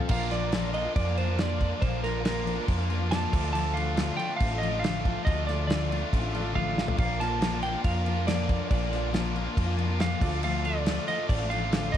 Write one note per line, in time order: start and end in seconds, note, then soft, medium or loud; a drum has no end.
0.00 0.09 F3 soft
0.00 0.10 C4 soft
0.09 0.86 A#1 loud
0.09 0.31 A#2 medium
0.09 0.50 D3 medium
0.09 0.29 F3 medium
0.09 0.30 A#3 medium
0.09 0.31 D4 medium
0.09 3.07 F4 medium
0.09 0.32 F4 medium
0.09 3.08 A#4 medium
0.09 3.30 A#4 medium
0.09 3.08 D5 medium
0.09 3.30 F5 medium
0.09 0.33 F5 medium
0.09 11.97 D6 medium
0.09 kick loud
0.09 crash loud
0.09 crash medium
0.30 0.50 F3 medium
0.30 0.51 A#3 medium
0.30 0.52 D4 medium
0.30 0.52 F4 medium
0.30 0.74 D5 loud
0.30 snare soft
0.30 crash medium
0.52 0.74 A#2 medium
0.52 0.95 D3 medium
0.52 0.71 F3 medium
0.52 0.73 A#3 medium
0.52 0.74 D4 medium
0.52 0.75 F4 medium
0.52 snare loud
0.52 crash medium
0.73 0.84 F3 medium
0.73 0.85 A#3 medium
0.73 0.85 D4 medium
0.73 0.83 F4 medium
0.73 0.95 D#5 medium
0.73 crash medium
0.85 1.08 A#3 soft
0.85 1.06 D4 soft
0.85 1.04 F4 soft
0.96 1.72 F2 medium
0.96 1.16 D5 loud
0.96 kick medium
0.96 crash medium
1.05 1.17 A#3 soft
1.05 1.18 D4 medium
1.05 1.17 F4 medium
1.17 1.28 F3 medium
1.17 1.29 A#3 medium
1.17 1.28 D4 medium
1.17 1.27 F4 medium
1.17 1.40 C5 medium
1.17 crash medium
1.28 1.39 A#3 soft
1.28 1.39 D4 soft
1.28 1.39 F4 medium
1.38 1.60 A#2 medium
1.38 1.81 D3 loud
1.38 1.58 F3 medium
1.38 1.59 A#3 medium
1.38 1.61 D4 medium
1.38 1.61 F4 medium
1.38 1.84 D5 medium
1.38 snare loud
1.38 crash medium
1.60 1.80 F3 medium
1.60 1.80 A#3 medium
1.60 1.81 D4 medium
1.60 1.81 F4 medium
1.60 kick medium
1.60 crash medium
1.80 2.58 A#1 loud
1.80 2.03 A#2 medium
1.80 2.24 D3 loud
1.80 2.00 F3 medium
1.80 2.01 A#3 medium
1.80 2.02 D4 medium
1.80 2.03 F4 medium
1.80 2.02 C5 medium
1.80 kick loud
1.80 crash medium
2.01 2.22 F3 medium
2.01 2.23 A#3 medium
2.01 2.24 D4 medium
2.01 2.24 F4 medium
2.01 2.24 A#4 medium
2.01 snare soft
2.01 crash medium
2.23 2.46 A#2 medium
2.23 2.68 D3 medium
2.23 2.44 F3 medium
2.23 2.44 A#3 medium
2.23 2.46 D4 medium
2.23 2.46 F4 medium
2.23 2.65 A#4 medium
2.23 snare loud
2.23 crash medium
2.45 2.57 F3 medium
2.45 2.57 A#3 medium
2.45 2.56 D4 medium
2.45 2.54 F4 medium
2.45 crash medium
2.55 2.80 A#3 soft
2.55 2.79 D4 medium
2.55 2.77 F4 medium
2.68 3.25 F2 medium
2.68 kick medium
2.68 crash medium
2.78 2.89 A#3 soft
2.78 2.90 D4 medium
2.78 2.89 F4 medium
2.89 3.00 F3 medium
2.89 3.01 A#3 medium
2.89 3.00 D4 medium
2.89 2.98 F4 medium
2.89 crash medium
2.99 3.10 A#3 soft
2.99 3.11 D4 soft
2.99 3.11 F4 medium
3.10 3.32 A#2 medium
3.10 3.32 D3 loud
3.10 3.31 F3 medium
3.10 3.33 A#3 medium
3.10 3.33 D4 loud
3.10 3.33 F4 loud
3.10 3.31 F4 medium
3.10 3.33 A#4 soft
3.10 3.32 D5 medium
3.10 3.52 A5 loud
3.10 snare loud
3.10 crash medium
3.32 4.09 D2 medium
3.32 3.53 D3 medium
3.32 3.53 F3 medium
3.32 3.54 A3 medium
3.32 3.55 D4 medium
3.32 6.30 F4 medium
3.32 3.55 F4 medium
3.32 6.95 A4 medium
3.32 6.30 A4 medium
3.32 6.30 D5 medium
3.32 11.97 F5 medium
3.32 kick loud
3.32 crash loud
3.53 3.76 D3 medium
3.53 3.74 F3 medium
3.53 3.75 A3 medium
3.53 3.76 D4 medium
3.53 3.77 F4 medium
3.53 3.76 A5 loud
3.53 crash medium
3.74 3.96 F3 medium
3.74 3.96 A3 medium
3.74 3.97 D4 medium
3.74 4.15 F5 loud
3.74 crash medium
3.78 3.98 F4 medium
3.97 4.19 D3 medium
3.97 4.17 F3 medium
3.97 4.18 A3 medium
3.97 4.19 D4 medium
3.97 4.20 F4 medium
3.97 snare loud
3.97 crash medium
4.17 4.29 F3 medium
4.17 4.30 A3 medium
4.17 4.30 D4 medium
4.17 4.36 G5 medium
4.17 crash medium
4.21 4.28 F4 medium
4.29 4.52 A3 soft
4.29 4.51 D4 medium
4.29 4.49 F4 medium
4.36 4.61 F5 medium
4.36 crash medium
4.41 5.16 A1 medium
4.41 kick medium
4.50 4.62 A3 soft
4.50 4.62 D4 medium
4.50 4.62 F4 medium
4.58 4.73 F3 medium
4.58 4.82 D#5 medium
4.63 4.73 A3 medium
4.63 4.72 D4 medium
4.63 4.70 F4 medium
4.63 crash medium
4.71 4.82 A3 soft
4.71 4.83 D4 soft
4.71 4.83 F4 medium
4.79 5.04 D3 medium
4.79 5.03 F3 medium
4.79 5.04 A3 medium
4.79 5.21 F5 medium
4.84 5.05 D4 loud
4.84 5.06 F4 medium
4.84 snare loud
4.84 crash medium
5.05 5.25 F3 medium
5.05 5.25 A3 medium
5.05 5.26 D4 medium
5.05 5.26 F4 medium
5.05 kick medium
5.05 crash medium
5.25 6.02 D2 loud
5.25 5.47 D3 medium
5.25 5.45 F3 medium
5.25 5.46 A3 medium
5.25 5.47 D4 medium
5.25 5.47 F4 medium
5.25 5.46 D#5 medium
5.25 kick loud
5.25 crash medium
5.46 5.66 F3 medium
5.46 5.67 A3 medium
5.46 5.68 D4 medium
5.46 5.67 F4 medium
5.46 5.66 D5 medium
5.46 snare soft
5.46 crash medium
5.66 5.89 D3 medium
5.66 5.88 F3 medium
5.66 5.89 A3 medium
5.66 5.90 D4 medium
5.66 5.91 F4 medium
5.66 6.08 D5 medium
5.66 crash medium
5.71 snare loud
5.89 6.01 F3 medium
5.89 6.01 A3 medium
5.89 6.02 D4 medium
5.89 6.00 F4 medium
5.89 crash medium
6.01 6.23 A3 soft
6.01 6.21 D4 soft
6.01 6.19 F4 medium
6.13 6.88 A1 medium
6.13 kick medium
6.13 crash medium
6.21 6.31 A3 soft
6.21 6.32 D4 medium
6.21 6.33 F4 medium
6.31 6.43 F3 medium
6.31 6.44 A3 medium
6.31 6.43 D4 medium
6.31 6.40 F4 medium
6.31 6.98 F4 medium
6.31 6.99 A4 medium
6.31 crash medium
6.36 6.98 D5 medium
6.42 6.53 A3 soft
6.42 6.53 D4 soft
6.42 6.53 F4 medium
6.52 6.75 D3 medium
6.52 6.73 F3 medium
6.52 6.74 A3 medium
6.52 6.75 D4 medium
6.52 6.76 F4 medium
6.52 6.96 F5 loud
6.52 kick medium
6.74 6.96 F3 medium
6.74 6.97 A3 medium
6.74 6.97 D4 medium
6.74 6.97 F4 medium
6.74 snare medium
6.88 floor tom medium
6.96 7.74 A#1 loud
6.96 7.19 A#2 medium
6.96 7.39 D3 medium
6.96 7.18 F3 medium
6.96 7.19 A#3 medium
6.96 7.20 D4 medium
6.96 7.20 F4 medium
6.96 10.18 F4 medium
6.96 10.18 A#4 medium
6.96 10.18 D5 medium
6.96 7.21 F5 medium
6.96 kick loud
6.96 crash medium
7.19 7.39 F3 medium
7.19 7.39 A#3 medium
7.19 7.40 D4 medium
7.19 7.41 F4 medium
7.19 7.60 A5 loud
7.19 snare soft
7.19 crash medium
7.39 7.62 A#2 medium
7.39 7.84 D3 medium
7.39 7.61 F3 medium
7.39 7.62 A#3 medium
7.39 7.62 D4 medium
7.39 7.63 F4 medium
7.39 snare loud
7.39 crash medium
7.62 7.73 F3 medium
7.62 7.74 A#3 medium
7.62 7.73 D4 medium
7.62 7.71 F4 medium
7.62 7.84 G5 medium
7.62 crash medium
7.72 7.96 A#3 soft
7.72 7.95 D4 soft
7.72 7.93 F4 medium
7.84 8.60 F2 medium
7.84 8.25 F5 medium
7.84 kick medium
7.84 crash medium
7.94 8.05 A#3 soft
7.94 8.06 D4 soft
7.94 8.06 F4 medium
8.05 8.17 F3 medium
8.05 8.17 A#3 medium
8.05 8.16 D4 medium
8.05 8.14 F4 medium
8.05 crash medium
8.15 8.26 A#3 soft
8.15 8.26 D4 medium
8.15 8.26 F4 medium
8.25 8.48 A#2 medium
8.25 8.70 D3 loud
8.25 8.46 F3 medium
8.25 8.47 A#3 medium
8.25 8.48 D4 medium
8.25 8.49 F4 medium
8.25 8.69 D5 medium
8.25 snare loud
8.25 crash medium
8.48 8.69 F3 medium
8.48 8.69 A#3 medium
8.48 8.69 D4 medium
8.48 8.70 F4 medium
8.48 kick medium
8.48 crash medium
8.69 9.46 A#1 loud
8.69 8.92 A#2 medium
8.69 9.11 D3 medium
8.69 8.88 F3 medium
8.69 8.89 A#3 medium
8.69 8.90 D4 medium
8.69 8.91 F4 medium
8.69 9.11 D5 medium
8.69 kick loud
8.69 crash medium
8.89 9.11 F3 medium
8.89 9.11 A#3 medium
8.89 9.11 D4 medium
8.89 9.13 F4 medium
8.89 snare soft
8.89 crash medium
9.11 9.34 A#2 medium
9.11 9.56 D3 medium
9.11 9.33 F3 medium
9.11 9.34 A#3 medium
9.11 9.35 D4 medium
9.11 9.35 F4 medium
9.11 snare loud
9.11 crash medium
9.34 9.45 F3 medium
9.34 9.46 A#3 medium
9.34 9.46 D4 medium
9.34 9.44 F4 medium
9.34 crash medium
9.45 9.68 A#3 soft
9.45 9.67 D4 medium
9.45 9.65 F4 medium
9.57 10.14 F2 medium
9.57 kick medium
9.57 crash medium
9.66 9.76 A#3 soft
9.66 9.77 D4 medium
9.66 9.78 F4 medium
9.77 9.88 F3 medium
9.77 9.89 A#3 medium
9.77 9.88 D4 medium
9.77 9.86 F4 medium
9.77 crash medium
9.87 9.99 A#3 soft
9.87 10.00 D4 soft
9.87 9.99 F4 medium
9.99 10.21 A#2 medium
9.99 10.20 D3 medium
9.99 10.19 F3 medium
9.99 10.21 A#3 medium
9.99 10.21 D4 medium
9.99 10.22 F4 loud
9.99 10.43 F5 medium
9.99 snare loud
9.99 crash medium
10.20 10.97 D2 loud
10.20 10.42 D3 medium
10.20 10.42 F3 medium
10.20 10.43 A3 medium
10.20 10.43 D4 medium
10.20 11.97 F4 medium
10.20 10.44 F4 medium
10.20 11.97 A4 medium
10.20 11.97 D5 medium
10.20 kick loud
10.20 crash loud
10.43 10.64 D3 medium
10.43 10.64 F3 medium
10.43 10.65 A3 medium
10.43 10.65 D4 medium
10.43 10.65 F4 medium
10.43 10.66 F5 loud
10.43 crash medium
10.64 10.86 F3 medium
10.64 10.86 A3 medium
10.64 10.87 F4 medium
10.64 11.05 D5 loud
10.64 crash medium
10.68 10.86 D4 medium
10.68 10.87 F4 medium
10.86 11.08 D3 medium
10.86 11.05 F3 medium
10.86 11.06 A3 medium
10.86 11.07 D4 medium
10.86 11.08 F4 medium
10.86 snare loud
10.86 crash medium
11.06 11.18 F3 medium
11.06 11.18 A3 medium
11.06 11.18 D4 medium
11.06 11.16 F4 medium
11.06 11.29 D#5 loud
11.06 crash medium
11.18 11.41 A3 soft
11.18 11.40 D4 soft
11.18 11.39 F4 medium
11.29 11.97 A1 medium
11.29 11.51 D5 medium
11.29 kick loud
11.29 crash loud
11.40 11.51 A3 medium
11.40 11.51 D4 soft
11.40 11.51 F4 medium
11.49 11.61 F3 medium
11.49 11.62 A3 medium
11.49 11.61 D4 medium
11.49 11.72 F4 medium
11.49 11.95 F5 loud
11.49 crash medium
11.53 11.59 F4 medium
11.60 11.71 A3 soft
11.60 11.71 D4 soft
11.60 11.71 F4 medium
11.71 11.93 D3 medium
11.71 11.91 F3 medium
11.71 11.93 A3 medium
11.71 11.93 D4 medium
11.71 11.94 F4 medium
11.71 snare loud
11.71 crash medium
11.92 11.97 F3 medium
11.92 11.97 A3 medium
11.92 11.97 D#5 medium
11.92 kick medium
11.92 crash medium